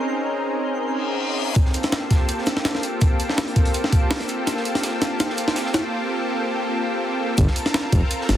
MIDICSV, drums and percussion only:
0, 0, Header, 1, 2, 480
1, 0, Start_track
1, 0, Key_signature, -2, "minor"
1, 0, Tempo, 363636
1, 140, Time_signature, 4, 2, 24, 8
1, 11050, End_track
2, 0, Start_track
2, 0, Title_t, "Drums"
2, 2059, Note_on_c, 9, 42, 86
2, 2059, Note_on_c, 9, 82, 89
2, 2060, Note_on_c, 9, 36, 109
2, 2184, Note_on_c, 9, 38, 48
2, 2191, Note_off_c, 9, 42, 0
2, 2191, Note_off_c, 9, 82, 0
2, 2192, Note_off_c, 9, 36, 0
2, 2297, Note_on_c, 9, 82, 66
2, 2299, Note_on_c, 9, 42, 68
2, 2316, Note_off_c, 9, 38, 0
2, 2415, Note_off_c, 9, 42, 0
2, 2415, Note_on_c, 9, 42, 40
2, 2429, Note_off_c, 9, 82, 0
2, 2429, Note_on_c, 9, 38, 49
2, 2536, Note_off_c, 9, 38, 0
2, 2536, Note_on_c, 9, 38, 122
2, 2539, Note_on_c, 9, 82, 80
2, 2540, Note_off_c, 9, 38, 0
2, 2540, Note_off_c, 9, 42, 0
2, 2540, Note_on_c, 9, 38, 112
2, 2540, Note_on_c, 9, 42, 85
2, 2671, Note_off_c, 9, 82, 0
2, 2672, Note_off_c, 9, 38, 0
2, 2672, Note_off_c, 9, 42, 0
2, 2779, Note_on_c, 9, 42, 66
2, 2780, Note_on_c, 9, 36, 94
2, 2781, Note_on_c, 9, 38, 95
2, 2788, Note_on_c, 9, 82, 77
2, 2911, Note_off_c, 9, 42, 0
2, 2912, Note_off_c, 9, 36, 0
2, 2913, Note_off_c, 9, 38, 0
2, 2920, Note_off_c, 9, 82, 0
2, 3019, Note_on_c, 9, 42, 87
2, 3019, Note_on_c, 9, 82, 80
2, 3145, Note_on_c, 9, 38, 43
2, 3151, Note_off_c, 9, 42, 0
2, 3151, Note_off_c, 9, 82, 0
2, 3247, Note_on_c, 9, 82, 62
2, 3258, Note_off_c, 9, 38, 0
2, 3258, Note_on_c, 9, 38, 55
2, 3258, Note_on_c, 9, 42, 67
2, 3379, Note_off_c, 9, 82, 0
2, 3387, Note_off_c, 9, 38, 0
2, 3387, Note_on_c, 9, 38, 48
2, 3388, Note_off_c, 9, 38, 0
2, 3388, Note_on_c, 9, 38, 48
2, 3390, Note_off_c, 9, 42, 0
2, 3497, Note_off_c, 9, 38, 0
2, 3497, Note_on_c, 9, 38, 123
2, 3498, Note_off_c, 9, 38, 0
2, 3498, Note_on_c, 9, 38, 113
2, 3498, Note_on_c, 9, 42, 86
2, 3502, Note_on_c, 9, 82, 85
2, 3626, Note_off_c, 9, 38, 0
2, 3626, Note_on_c, 9, 38, 39
2, 3630, Note_off_c, 9, 42, 0
2, 3634, Note_off_c, 9, 38, 0
2, 3634, Note_off_c, 9, 82, 0
2, 3634, Note_on_c, 9, 38, 49
2, 3736, Note_on_c, 9, 82, 64
2, 3739, Note_on_c, 9, 42, 68
2, 3766, Note_off_c, 9, 38, 0
2, 3868, Note_off_c, 9, 82, 0
2, 3871, Note_off_c, 9, 42, 0
2, 3974, Note_on_c, 9, 82, 83
2, 3979, Note_on_c, 9, 42, 90
2, 3980, Note_on_c, 9, 36, 114
2, 4106, Note_off_c, 9, 82, 0
2, 4111, Note_off_c, 9, 42, 0
2, 4112, Note_off_c, 9, 36, 0
2, 4220, Note_on_c, 9, 42, 69
2, 4222, Note_on_c, 9, 82, 61
2, 4341, Note_on_c, 9, 38, 49
2, 4350, Note_off_c, 9, 38, 0
2, 4350, Note_on_c, 9, 38, 37
2, 4352, Note_off_c, 9, 42, 0
2, 4354, Note_off_c, 9, 82, 0
2, 4444, Note_off_c, 9, 38, 0
2, 4444, Note_on_c, 9, 38, 105
2, 4461, Note_off_c, 9, 38, 0
2, 4461, Note_on_c, 9, 38, 110
2, 4461, Note_on_c, 9, 42, 87
2, 4463, Note_on_c, 9, 82, 86
2, 4588, Note_off_c, 9, 42, 0
2, 4588, Note_on_c, 9, 42, 42
2, 4593, Note_off_c, 9, 38, 0
2, 4595, Note_off_c, 9, 82, 0
2, 4698, Note_on_c, 9, 82, 62
2, 4699, Note_off_c, 9, 42, 0
2, 4699, Note_on_c, 9, 42, 70
2, 4700, Note_on_c, 9, 36, 97
2, 4822, Note_off_c, 9, 42, 0
2, 4822, Note_on_c, 9, 42, 47
2, 4830, Note_off_c, 9, 82, 0
2, 4832, Note_off_c, 9, 36, 0
2, 4937, Note_on_c, 9, 82, 90
2, 4941, Note_off_c, 9, 42, 0
2, 4941, Note_on_c, 9, 42, 88
2, 5069, Note_off_c, 9, 82, 0
2, 5070, Note_on_c, 9, 38, 53
2, 5073, Note_off_c, 9, 42, 0
2, 5076, Note_off_c, 9, 38, 0
2, 5076, Note_on_c, 9, 38, 39
2, 5181, Note_on_c, 9, 36, 99
2, 5182, Note_on_c, 9, 42, 78
2, 5187, Note_on_c, 9, 82, 74
2, 5208, Note_off_c, 9, 38, 0
2, 5313, Note_off_c, 9, 36, 0
2, 5314, Note_off_c, 9, 42, 0
2, 5319, Note_off_c, 9, 82, 0
2, 5419, Note_on_c, 9, 38, 127
2, 5420, Note_off_c, 9, 38, 0
2, 5420, Note_on_c, 9, 38, 115
2, 5420, Note_on_c, 9, 42, 88
2, 5420, Note_on_c, 9, 46, 77
2, 5551, Note_off_c, 9, 42, 0
2, 5551, Note_on_c, 9, 42, 47
2, 5552, Note_off_c, 9, 38, 0
2, 5552, Note_off_c, 9, 46, 0
2, 5552, Note_on_c, 9, 38, 36
2, 5653, Note_on_c, 9, 82, 66
2, 5663, Note_off_c, 9, 42, 0
2, 5663, Note_on_c, 9, 42, 70
2, 5684, Note_off_c, 9, 38, 0
2, 5785, Note_off_c, 9, 82, 0
2, 5795, Note_off_c, 9, 42, 0
2, 5902, Note_on_c, 9, 38, 50
2, 5902, Note_on_c, 9, 42, 88
2, 5906, Note_on_c, 9, 82, 94
2, 6033, Note_off_c, 9, 38, 0
2, 6033, Note_on_c, 9, 38, 50
2, 6034, Note_off_c, 9, 42, 0
2, 6038, Note_off_c, 9, 82, 0
2, 6143, Note_on_c, 9, 42, 69
2, 6144, Note_on_c, 9, 82, 68
2, 6165, Note_off_c, 9, 38, 0
2, 6273, Note_off_c, 9, 42, 0
2, 6273, Note_on_c, 9, 38, 45
2, 6273, Note_on_c, 9, 42, 48
2, 6276, Note_off_c, 9, 82, 0
2, 6381, Note_off_c, 9, 38, 0
2, 6381, Note_off_c, 9, 42, 0
2, 6381, Note_on_c, 9, 38, 121
2, 6381, Note_on_c, 9, 42, 89
2, 6390, Note_on_c, 9, 82, 96
2, 6513, Note_off_c, 9, 38, 0
2, 6513, Note_off_c, 9, 42, 0
2, 6522, Note_off_c, 9, 82, 0
2, 6622, Note_on_c, 9, 38, 59
2, 6622, Note_on_c, 9, 42, 69
2, 6623, Note_on_c, 9, 82, 67
2, 6754, Note_off_c, 9, 38, 0
2, 6754, Note_off_c, 9, 42, 0
2, 6755, Note_off_c, 9, 82, 0
2, 6861, Note_on_c, 9, 82, 84
2, 6864, Note_on_c, 9, 38, 63
2, 6864, Note_on_c, 9, 42, 93
2, 6993, Note_off_c, 9, 82, 0
2, 6994, Note_off_c, 9, 38, 0
2, 6994, Note_on_c, 9, 38, 52
2, 6996, Note_off_c, 9, 42, 0
2, 7093, Note_on_c, 9, 82, 66
2, 7102, Note_on_c, 9, 42, 79
2, 7126, Note_off_c, 9, 38, 0
2, 7225, Note_off_c, 9, 82, 0
2, 7230, Note_on_c, 9, 38, 57
2, 7232, Note_off_c, 9, 38, 0
2, 7232, Note_on_c, 9, 38, 51
2, 7234, Note_off_c, 9, 42, 0
2, 7335, Note_off_c, 9, 38, 0
2, 7335, Note_on_c, 9, 38, 109
2, 7340, Note_on_c, 9, 42, 62
2, 7347, Note_on_c, 9, 82, 84
2, 7467, Note_off_c, 9, 38, 0
2, 7468, Note_on_c, 9, 38, 58
2, 7472, Note_off_c, 9, 42, 0
2, 7479, Note_off_c, 9, 82, 0
2, 7576, Note_on_c, 9, 82, 62
2, 7580, Note_off_c, 9, 38, 0
2, 7580, Note_on_c, 9, 38, 71
2, 7580, Note_on_c, 9, 42, 81
2, 7708, Note_off_c, 9, 82, 0
2, 7712, Note_off_c, 9, 38, 0
2, 7712, Note_off_c, 9, 42, 0
2, 9737, Note_on_c, 9, 82, 88
2, 9741, Note_on_c, 9, 36, 115
2, 9741, Note_on_c, 9, 42, 93
2, 9867, Note_on_c, 9, 38, 53
2, 9869, Note_off_c, 9, 82, 0
2, 9873, Note_off_c, 9, 36, 0
2, 9873, Note_off_c, 9, 42, 0
2, 9979, Note_on_c, 9, 42, 71
2, 9987, Note_on_c, 9, 82, 70
2, 9999, Note_off_c, 9, 38, 0
2, 10108, Note_off_c, 9, 42, 0
2, 10108, Note_on_c, 9, 42, 44
2, 10109, Note_on_c, 9, 38, 52
2, 10119, Note_off_c, 9, 82, 0
2, 10220, Note_off_c, 9, 38, 0
2, 10220, Note_off_c, 9, 42, 0
2, 10220, Note_on_c, 9, 38, 114
2, 10220, Note_on_c, 9, 42, 89
2, 10223, Note_off_c, 9, 38, 0
2, 10223, Note_on_c, 9, 38, 119
2, 10227, Note_on_c, 9, 82, 89
2, 10352, Note_off_c, 9, 42, 0
2, 10355, Note_off_c, 9, 38, 0
2, 10359, Note_off_c, 9, 82, 0
2, 10461, Note_on_c, 9, 36, 98
2, 10461, Note_on_c, 9, 42, 74
2, 10469, Note_on_c, 9, 82, 68
2, 10593, Note_off_c, 9, 36, 0
2, 10593, Note_off_c, 9, 42, 0
2, 10601, Note_off_c, 9, 82, 0
2, 10701, Note_on_c, 9, 42, 93
2, 10706, Note_on_c, 9, 82, 80
2, 10833, Note_off_c, 9, 42, 0
2, 10838, Note_off_c, 9, 82, 0
2, 10841, Note_on_c, 9, 38, 51
2, 10943, Note_off_c, 9, 38, 0
2, 10943, Note_on_c, 9, 38, 59
2, 10943, Note_on_c, 9, 42, 68
2, 10947, Note_on_c, 9, 82, 71
2, 11050, Note_off_c, 9, 38, 0
2, 11050, Note_off_c, 9, 42, 0
2, 11050, Note_off_c, 9, 82, 0
2, 11050, End_track
0, 0, End_of_file